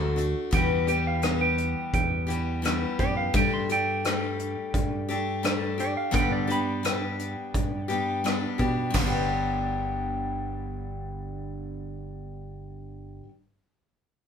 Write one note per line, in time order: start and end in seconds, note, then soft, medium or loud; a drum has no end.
0.00 0.33 D2 medium
0.00 0.17 D3 soft
0.00 0.17 A3 soft
0.00 0.16 D4 medium
0.00 0.15 F#4 medium
0.00 0.50 A#5 loud
0.16 0.52 A3 soft
0.16 0.52 D4 soft
0.16 0.51 F#4 soft
0.16 closed hi-hat medium
0.51 0.86 E2 medium
0.51 1.74 E2 medium
0.51 0.87 B2 medium
0.51 0.87 E3 medium
0.51 0.87 G3 medium
0.51 0.87 B3 medium
0.51 0.86 G4 medium
0.51 0.87 G5 medium
0.51 kick medium
0.51 closed hi-hat medium
0.87 1.21 E3 soft
0.87 1.22 G3 soft
0.87 1.22 B3 soft
0.87 1.22 G4 soft
0.87 1.05 G5 medium
0.87 closed hi-hat medium
1.07 1.40 F5 medium
1.22 2.27 E3 soft
1.22 2.28 G3 medium
1.22 2.27 B3 medium
1.22 2.26 G4 medium
1.22 cross-stick medium
1.22 closed hi-hat medium
1.41 1.91 G5 medium
1.58 closed hi-hat medium
1.93 2.84 E2 medium
1.93 2.61 G5 medium
1.93 kick medium
1.93 closed hi-hat medium
2.27 2.61 E3 soft
2.27 2.62 G3 soft
2.27 2.63 B3 soft
2.27 2.62 G4 soft
2.27 closed hi-hat medium
2.62 2.97 E3 medium
2.62 2.98 G3 medium
2.62 2.98 B3 medium
2.62 2.98 G4 medium
2.62 cross-stick medium
2.62 closed hi-hat medium
2.99 3.29 F#2 medium
2.99 3.33 E3 soft
2.99 3.34 B3 soft
2.99 3.33 G4 soft
2.99 3.16 D5 medium
2.99 kick medium
2.99 closed hi-hat soft
3.17 3.33 F5 medium
3.34 4.55 G2 medium
3.34 3.68 G3 medium
3.34 3.69 A3 medium
3.34 3.69 D4 medium
3.34 3.68 G4 medium
3.34 3.52 G5 medium
3.34 kick medium
3.34 closed hi-hat medium
3.53 3.69 C6 medium
3.69 4.05 A3 soft
3.69 4.05 D4 soft
3.69 4.04 G4 soft
3.69 5.06 G5 loud
3.69 closed hi-hat soft
4.05 5.14 G3 soft
4.05 5.10 A3 medium
4.05 5.09 D4 soft
4.05 5.08 G4 soft
4.05 cross-stick loud
4.05 closed hi-hat medium
4.39 closed hi-hat soft
4.74 5.95 G2 medium
4.74 kick medium
4.74 closed hi-hat medium
5.09 5.43 A3 soft
5.09 5.43 D4 soft
5.09 5.43 G4 medium
5.09 closed hi-hat medium
5.43 5.78 G3 medium
5.43 5.78 A3 medium
5.43 5.78 D4 medium
5.43 5.77 G4 medium
5.43 cross-stick loud
5.43 closed hi-hat medium
5.78 6.12 A3 soft
5.78 6.11 D4 soft
5.78 6.12 G4 soft
5.78 5.96 D5 medium
5.78 closed hi-hat medium
5.97 6.14 F5 medium
6.11 6.47 G2 medium
6.11 7.35 G2 medium
6.11 6.48 D3 medium
6.11 6.47 G3 medium
6.11 6.47 B3 medium
6.11 6.47 D4 medium
6.11 6.46 G4 medium
6.11 kick medium
6.11 closed hi-hat medium
6.15 6.32 G5 medium
6.32 6.49 D5 medium
6.47 6.82 G3 soft
6.47 6.83 B3 soft
6.47 6.83 D4 soft
6.47 6.83 G4 soft
6.47 closed hi-hat medium
6.52 7.87 B5 medium
6.83 7.88 G3 soft
6.83 7.89 B3 soft
6.83 7.87 D4 soft
6.83 7.87 G4 medium
6.83 cross-stick medium
6.83 closed hi-hat medium
7.19 closed hi-hat soft
7.54 8.45 G2 medium
7.54 kick medium
7.54 closed hi-hat medium
7.88 8.23 G3 soft
7.88 8.23 B3 soft
7.88 8.24 D4 soft
7.88 8.24 G4 medium
7.88 closed hi-hat medium
8.24 8.59 G3 medium
8.24 8.58 B3 medium
8.24 8.58 D4 medium
8.24 8.57 G4 medium
8.24 cross-stick medium
8.24 closed hi-hat medium
8.58 8.90 B2 medium
8.58 8.95 G3 soft
8.58 8.95 B3 soft
8.58 8.94 D4 soft
8.58 8.94 G4 soft
8.58 kick medium
8.58 closed hi-hat soft
8.90 13.21 G1 medium
8.90 13.23 G2 medium
8.90 13.25 D3 medium
8.90 kick medium
8.90 crash medium
8.95 13.26 G3 medium
8.95 snare medium
9.01 13.28 B3 medium
9.01 13.30 D4 medium
9.07 13.31 G4 medium